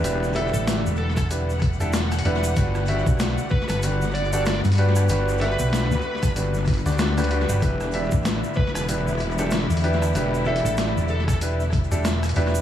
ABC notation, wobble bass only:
X:1
M:4/4
L:1/16
Q:"Swing 16ths" 1/4=95
K:Em
V:1 name="Wobble bass" clef=bass
E,,,3 z12 z | G,,,3 z4 G,,,6 z3 | G,,,3 z2 D,, z2 G,,,3 D,,4 z | E,,,3 z4 E,,,6 z3 |
E,,,3 z12 z |]